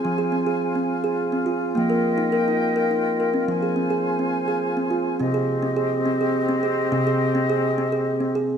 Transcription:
<<
  \new Staff \with { instrumentName = "Flute section" } { \time 6/8 \key c \phrygian \tempo 4. = 70 << { <c'' aes''>2. | <ees'' g''>2. | <c'' aes''>2. | <g' ees''>2.~ |
<g' ees''>2. | } \\ { f'2.~ | f'2.~ | f'2. | c'2.~ |
c'2. | } >> }
  \new Staff \with { instrumentName = "Kalimba" } { \time 6/8 \key c \phrygian c'16 aes'16 c'16 aes'8 c'8 aes'8 c'16 f'8 | bes16 bes'8 ees'16 bes'16 ees'8 bes'16 ees'8 bes'16 c'16~ | c'16 aes'16 c'16 aes'8 c'8 aes'8 c'16 f'8 | c'16 aes'8 c'16 aes'8 c'16 aes'8 c'16 aes'8 |
c'16 aes'8 c'16 aes'8 c'16 aes'8 c'16 aes'8 | }
  \new Staff \with { instrumentName = "Kalimba" } { \clef bass \time 6/8 \key c \phrygian f2. | f2. | f2. | c2. |
c2. | }
>>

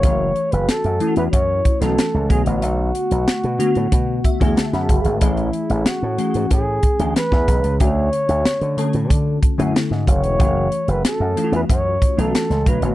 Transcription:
<<
  \new Staff \with { instrumentName = "Flugelhorn" } { \time 4/4 \key fis \minor \tempo 4 = 93 cis''8. b'16 a'8. b'16 cis''8. a'8. gis'16 fis'16~ | fis'2.~ fis'8 r8 | e'4 fis'4 gis'4 b'4 | cis''2 r4. cis''8~ |
cis''8. b'16 a'8. b'16 cis''8. a'8. b'16 b'16 | }
  \new Staff \with { instrumentName = "FM electric piano" } { \time 4/4 \key fis \minor r1 | r2 r8 e''16 fis''16 a''16 b''8. | r1 | r1 |
r1 | }
  \new Staff \with { instrumentName = "FM electric piano" } { \time 4/4 \key fis \minor <e a cis' fis'>4 r8 <e a cis' e' fis'>4 r16 <e a cis' fis'>8. <d a b fis'>8~ | <d a b fis'>4 r8 <d a b fis'>4 r16 <d a b gis'>4 r16 | <e a cis' gis'>4 r8 <e a cis' gis'>4 r16 <e a cis' gis'>4 r16 | <d a cis' fis'>4 r8 <d a cis' a'>4 r16 <d a cis' e'>4 r16 |
<e a cis' fis'>4 r8 <e a cis' f' fis'>4 r16 <e a cis' fis'>8. <d a b fis'>8 | }
  \new Staff \with { instrumentName = "Slap bass" } { \clef bass \time 4/4 \key fis \minor fis,,8 r16 fis,,16 r16 fis,16 r16 e,16 fis,8 r16 b,,16 r16 cis,16 b,,16 a,,16 | b,,8 r16 b,,16 r16 b,16 r16 a,16 b,8 r16 e,16 r16 fis,16 fis,,16 gis,,16 | a,,8 r16 a,,16 r16 a,16 r16 gis,16 a,8 r16 d,16 r16 e,16 b,,16 cis,16 | d,8 r16 d,16 r16 d16 r16 a,16 d8 r16 fis,16 r16 gis,16 fis,,16 e,,16 |
fis,,8 r16 fis,,16 r16 fis,16 r16 e,16 fis,8 r16 b,,16 r16 cis,16 b,,16 a,,16 | }
  \new DrumStaff \with { instrumentName = "Drums" } \drummode { \time 4/4 <hh bd>8 hh16 hh16 <hh sn>16 hh16 hh16 hh16 <hh bd>8 <hh bd>16 <hh sn>16 <hh sn>8 <hh bd>16 hh16 | hh8 hh16 hh16 <hh sn>16 hh16 hh16 hh16 <hh bd>8 <hh bd>16 <hh bd>16 <hh sn>16 <hh sn>16 <hh bd>16 hh16 | <hh bd>16 hh16 hh16 hh16 <hh sn>8 hh16 hh16 <hh bd>8 <hh bd>16 hh16 <hh sn>16 <bd sn>16 <hh bd>16 hh16 | <hh bd>8 hh16 hh16 <hh sn>16 hh16 hh16 hh16 <hh bd>8 <hh bd>16 hh16 <hh sn>16 sn16 <hh bd>16 hh16 |
<hh bd>8 hh16 hh16 <hh sn>8 hh16 hh16 <hh bd>8 <hh bd>16 hh16 <hh sn>16 <hh sn>16 <hh bd>16 hh16 | }
>>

